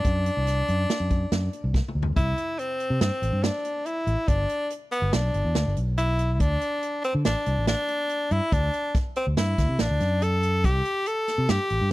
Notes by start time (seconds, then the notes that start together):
Already playing: D4
0.05 F#2, kick, closed hi-hat
0.26 closed hi-hat
0.37 C2
0.47 snare, closed hi-hat
0.68 F#2, closed hi-hat
0.90 snare, closed hi-hat
1.00 F#2
1.11 kick, closed hi-hat
1.32 F#2, snare, closed hi-hat
1.53 closed hi-hat
1.64 C2
1.74 kick, snare
1.88 mid tom
1.95 D2
2.03 floor tom
2.16 C2 E4, kick, closed hi-hat
2.38 closed hi-hat
2.59 C4, closed hi-hat
2.80 closed hi-hat
2.90 C3
3.01 G2 C4, snare, closed hi-hat
3.22 A1, closed hi-hat
3.33 G2
3.44 D4, snare, closed hi-hat
3.65 closed hi-hat
3.86 E4, closed hi-hat
4.07 A1, closed hi-hat
4.28 G1 D4, kick, closed hi-hat
4.49 closed hi-hat
4.70 closed hi-hat
4.91 B3, closed hi-hat
5.02 G1
5.13 B1 D4, snare, closed hi-hat
5.34 G1, closed hi-hat
5.45 E2
5.55 D2, snare, closed hi-hat
5.66 G1
5.77 B1, closed hi-hat
5.98 E4, closed hi-hat
6.19 closed hi-hat
6.33 E4
6.40 D2 D4, kick, closed hi-hat
6.62 closed hi-hat
6.83 closed hi-hat
7.04 C4, closed hi-hat
7.15 D3
7.25 A1 D4, snare, closed hi-hat
7.46 C2, closed hi-hat
7.57 A1
7.67 D4, snare, closed hi-hat
7.88 closed hi-hat
8.09 closed hi-hat
8.31 G2 E4, closed hi-hat
8.52 D2 D4, kick, closed hi-hat
8.74 closed hi-hat
8.95 kick, snare, closed hi-hat
9.16 C4, closed hi-hat
9.27 D2
9.37 G2 E4, snare, closed hi-hat
9.58 D2, kick, snare, closed hi-hat
9.69 C3
9.79 A1 D4, snare, closed hi-hat
9.90 D2
10.00 F#2, snare, closed hi-hat
10.22 A4, closed hi-hat
10.43 closed hi-hat
10.64 C2 G4, kick, closed hi-hat
10.85 closed hi-hat
11.06 A4, closed hi-hat
11.28 snare, closed hi-hat
11.38 C3
11.49 G2 G4, snare, closed hi-hat
11.70 A1, closed hi-hat
11.82 G2